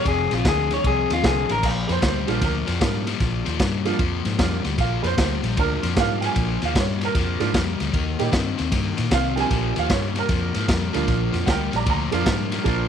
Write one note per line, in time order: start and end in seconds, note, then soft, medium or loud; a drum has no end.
0.05 0.26 F1 loud
0.05 0.29 F2 medium
0.05 0.29 C3 medium
0.05 0.34 G#4 medium
0.05 kick medium
0.05 ride medium
0.31 0.43 A#1 loud
0.31 0.44 F2 medium
0.31 0.44 C3 medium
0.31 0.46 F4 medium
0.31 snare soft
0.31 ride medium
0.45 0.77 D2 medium
0.45 0.68 F2 medium
0.45 0.69 D3 medium
0.45 0.72 G#4 loud
0.45 kick loud
0.45 snare loud
0.45 ride medium
0.70 0.83 F2 medium
0.70 0.83 D3 loud
0.70 0.86 C#5 loud
0.70 snare soft
0.70 ride medium
0.84 1.05 C2 loud
0.84 1.08 F2 medium
0.84 1.08 C3 loud
0.84 1.11 G#4 loud
0.84 kick medium
0.84 ride medium
1.10 1.21 D#2 medium
1.10 1.22 F2 loud
1.10 1.23 C3 medium
1.10 1.25 F4 loud
1.10 snare soft
1.10 ride medium
1.22 1.45 C2 loud
1.22 1.47 F2 medium
1.22 1.47 D3 medium
1.22 1.63 F3 medium
1.22 1.63 A3 medium
1.22 1.63 C4 medium
1.22 1.63 F4 medium
1.22 1.50 G#4 medium
1.22 1.63 A4 medium
1.22 kick medium
1.22 snare loud
1.22 ride medium
1.49 1.63 A1 loud
1.49 1.62 F2 medium
1.49 1.62 D3 loud
1.49 1.64 A#4 loud
1.49 snare soft
1.49 ride medium
1.63 1.84 A#1 loud
1.63 1.86 A#2 medium
1.63 1.86 F3 medium
1.63 1.89 F5 medium
1.63 kick medium
1.63 snare soft
1.63 crash loud
1.87 2.00 F2 medium
1.87 2.01 A#2 medium
1.87 2.02 F3 loud
1.87 1.89 B4 medium
1.87 snare soft
1.87 ride medium
1.92 2.04 C5 medium
2.02 2.23 D2 medium
2.02 2.26 A#2 medium
2.02 2.26 G3 medium
2.02 2.43 C5 medium
2.02 kick medium
2.02 snare loud
2.02 ride medium
2.27 2.40 A#1 medium
2.27 2.40 A#2 medium
2.27 2.40 F3 medium
2.27 2.40 G3 medium
2.27 2.41 A#3 medium
2.27 2.41 D4 medium
2.27 2.41 F4 medium
2.27 snare soft
2.27 ride medium
2.41 2.62 D2 medium
2.41 2.65 A#2 medium
2.41 2.65 F3 medium
2.41 2.68 A#4 medium
2.41 kick medium
2.41 snare soft
2.41 ride medium
2.66 2.79 F2 medium
2.66 2.79 A#2 medium
2.66 2.80 F3 medium
2.66 snare soft
2.66 ride medium
2.80 3.13 G#2 loud
2.80 3.04 A#2 medium
2.80 3.04 F3 medium
2.80 3.05 G3 loud
2.80 3.04 A#3 medium
2.80 3.05 D4 medium
2.80 3.05 F4 medium
2.80 kick medium
2.80 snare loud
2.80 ride medium
3.07 3.19 A#2 medium
3.07 3.20 G3 medium
3.07 snare soft
3.07 ride medium
3.20 3.41 A#1 medium
3.20 3.44 A#2 medium
3.20 3.44 F3 medium
3.20 kick medium
3.20 snare soft
3.20 ride medium
3.45 3.58 D#2 medium
3.45 3.58 A#2 medium
3.45 3.59 F3 medium
3.45 snare soft
3.45 ride medium
3.59 3.92 G2 medium
3.59 3.83 A#2 medium
3.59 3.84 G3 medium
3.59 kick medium
3.59 snare loud
3.59 ride medium
3.85 3.98 A#2 medium
3.85 3.98 F3 medium
3.85 3.98 G3 medium
3.85 3.98 A#3 medium
3.85 3.98 D4 medium
3.85 3.98 F4 medium
3.85 snare soft
3.85 ride medium
3.99 4.20 F2 loud
3.99 4.23 A#2 medium
3.99 4.23 F3 medium
3.99 kick medium
3.99 ride medium
4.25 4.36 G#2 loud
4.25 4.38 A#2 medium
4.25 4.38 F3 medium
4.25 snare soft
4.25 ride medium
4.39 4.60 F2 loud
4.39 4.62 A#2 medium
4.39 4.62 F3 medium
4.39 4.62 G3 medium
4.39 4.62 A#3 medium
4.39 4.62 D4 medium
4.39 4.63 F4 medium
4.39 kick medium
4.39 snare loud
4.39 ride medium
4.64 4.76 D2 medium
4.64 4.77 A#2 medium
4.64 4.77 G3 medium
4.64 snare soft
4.64 ride medium
4.78 4.99 A#1 loud
4.78 5.01 A#2 medium
4.78 5.02 F3 medium
4.78 5.05 F5 medium
4.78 kick medium
4.78 snare soft
4.78 ride medium
5.03 5.15 F2 loud
5.03 5.16 A#2 medium
5.03 5.16 F3 medium
5.03 5.04 B4 medium
5.03 snare soft
5.03 ride medium
5.07 5.19 C5 medium
5.17 5.39 D2 medium
5.17 5.41 A#2 medium
5.17 5.41 G3 medium
5.17 5.57 C5 medium
5.17 kick medium
5.17 snare loud
5.17 ride medium
5.42 5.54 A#1 medium
5.42 5.55 A#2 medium
5.42 5.56 G3 medium
5.42 snare soft
5.42 ride medium
5.56 5.78 D2 loud
5.56 5.80 A#2 medium
5.56 5.80 F3 medium
5.56 5.82 D4 medium
5.56 5.83 A#4 loud
5.56 kick loud
5.56 ride medium
5.82 5.94 F2 medium
5.82 5.95 A#2 medium
5.82 5.96 F3 loud
5.82 snare soft
5.82 ride medium
5.96 6.28 G#2 loud
5.96 6.20 A#2 medium
5.96 6.56 F3 medium
5.96 6.20 G3 medium
5.96 6.57 A#3 medium
5.96 6.57 D4 medium
5.96 6.57 F4 medium
5.96 6.23 F5 loud
5.96 kick medium
5.96 snare loud
5.96 ride medium
6.21 6.35 A#2 medium
6.21 6.35 G3 medium
6.21 6.23 G5 medium
6.21 snare soft
6.21 ride medium
6.26 6.62 G#5 loud
6.36 6.57 A#1 loud
6.36 6.59 A#2 medium
6.36 6.60 F3 medium
6.36 kick medium
6.36 ride medium
6.62 6.73 D#2 medium
6.62 6.74 A#2 medium
6.62 6.75 F3 medium
6.62 6.77 F5 medium
6.62 snare soft
6.62 ride medium
6.75 7.07 G2 medium
6.75 6.98 A#2 medium
6.75 6.99 G3 medium
6.75 kick medium
6.75 snare loud
6.75 ride medium
6.80 7.03 C#5 medium
7.01 7.13 A#2 medium
7.01 7.14 G3 medium
7.01 8.18 A#4 loud
7.01 snare soft
7.01 ride medium
7.15 7.36 F2 medium
7.15 7.38 A#2 medium
7.15 7.38 F3 medium
7.15 kick loud
7.15 snare soft
7.15 ride medium
7.40 7.52 G#2 medium
7.40 7.53 A#2 medium
7.40 7.53 F3 medium
7.40 7.53 A#3 medium
7.40 7.53 D4 medium
7.40 7.53 F4 loud
7.40 snare soft
7.40 ride medium
7.54 7.75 F2 medium
7.54 7.78 A#2 medium
7.54 7.78 G3 loud
7.54 kick medium
7.54 snare loud
7.54 ride medium
7.80 7.91 D2 medium
7.80 7.93 A#2 medium
7.80 7.93 G3 loud
7.80 snare soft
7.80 ride medium
7.93 8.14 D#2 loud
7.93 8.16 D#3 medium
7.93 8.17 A#3 medium
7.93 kick medium
7.93 ride medium
8.18 8.31 A#2 medium
8.18 8.30 D#3 medium
8.18 8.31 G3 medium
8.18 8.31 A#3 medium
8.18 8.32 D#4 medium
8.18 8.32 G4 medium
8.18 snare soft
8.18 ride medium
8.32 8.53 G2 medium
8.32 8.55 D#3 medium
8.32 8.56 C4 medium
8.32 kick medium
8.32 snare loud
8.32 ride medium
8.58 8.70 D#2 medium
8.58 8.70 D#3 medium
8.58 8.71 C4 medium
8.58 snare soft
8.58 ride medium
8.71 8.93 G2 loud
8.71 8.95 D#3 medium
8.71 8.95 A#3 loud
8.71 kick medium
8.71 snare soft
8.71 ride medium
8.97 9.09 A#2 loud
8.97 9.10 D#3 medium
8.97 9.10 A#3 loud
8.97 snare soft
8.97 ride medium
9.11 9.43 C2 loud
9.11 9.35 D#3 medium
9.11 9.35 C4 loud
9.11 9.38 F5 loud
9.11 kick medium
9.11 snare loud
9.11 ride medium
9.36 9.50 D#3 medium
9.36 9.87 F3 medium
9.36 9.87 G3 medium
9.36 9.87 A#3 medium
9.36 9.50 C4 loud
9.36 9.87 D4 medium
9.36 9.38 G5 medium
9.36 snare soft
9.36 ride medium
9.40 9.77 G#5 loud
9.50 9.71 A#1 loud
9.50 9.74 A#2 medium
9.50 9.74 F3 loud
9.50 kick medium
9.50 snare soft
9.50 ride medium
9.76 9.88 D#2 loud
9.76 9.88 A#2 medium
9.76 9.89 F3 loud
9.76 9.91 F5 medium
9.76 snare soft
9.76 ride medium
9.89 10.22 G2 medium
9.89 10.13 A#2 medium
9.89 10.13 G3 medium
9.89 10.16 C#5 medium
9.89 kick medium
9.89 snare loud
9.89 ride medium
10.15 10.28 A#2 medium
10.15 10.28 G3 medium
10.15 11.32 A#4 medium
10.15 snare soft
10.15 ride medium
10.29 10.50 F2 loud
10.29 10.53 A#2 medium
10.29 10.53 F3 medium
10.29 kick loud
10.29 snare soft
10.29 ride medium
10.54 10.67 G#2 medium
10.54 10.67 A#2 medium
10.54 10.67 F3 medium
10.54 snare soft
10.54 ride medium
10.68 10.90 F2 medium
10.68 10.92 A#2 medium
10.68 10.92 G3 medium
10.68 kick medium
10.68 snare loud
10.68 ride medium
10.93 11.06 D2 medium
10.93 11.06 A#2 medium
10.93 11.44 F3 medium
10.93 11.06 G3 loud
10.93 11.45 A#3 medium
10.93 11.45 D4 medium
10.93 11.45 F4 medium
10.93 snare soft
10.93 ride medium
11.07 11.29 A#1 loud
11.07 11.31 A#2 medium
11.07 11.31 F3 loud
11.07 kick medium
11.07 snare soft
11.07 ride medium
11.32 11.45 F2 loud
11.32 11.44 A#2 medium
11.32 11.46 F3 loud
11.32 snare soft
11.32 ride medium
11.46 11.68 D2 medium
11.46 11.70 A#2 medium
11.46 11.70 G3 medium
11.46 11.73 A#4 medium
11.46 11.49 F#5 medium
11.46 kick medium
11.46 snare loud
11.46 ride medium
11.50 11.74 G5 medium
11.71 11.84 A#1 medium
11.71 11.85 A#2 medium
11.71 11.85 G3 medium
11.71 snare soft
11.71 ride medium
11.76 11.87 D5 medium
11.76 11.88 A#5 medium
11.86 12.07 D2 loud
11.86 12.10 A#2 medium
11.86 12.10 F3 loud
11.86 kick loud
11.86 ride medium
11.90 12.88 A#5 medium
12.11 12.24 F2 medium
12.11 12.25 A#2 medium
12.11 12.62 F3 medium
12.11 12.25 F3 loud
12.11 12.63 A#3 medium
12.11 12.63 D4 medium
12.11 12.63 F4 loud
12.11 snare soft
12.11 ride medium
12.26 12.58 G#2 medium
12.26 12.49 A#2 medium
12.26 12.50 G3 loud
12.26 kick medium
12.26 snare loud
12.26 ride medium
12.52 12.64 A#2 medium
12.52 12.64 G3 medium
12.52 snare soft
12.52 ride medium
12.64 12.86 A#1 loud
12.64 12.88 A#2 medium
12.64 12.88 F3 medium
12.64 12.88 A#3 medium
12.64 12.88 D4 medium
12.64 12.88 F4 medium
12.64 kick medium
12.64 snare soft
12.64 ride medium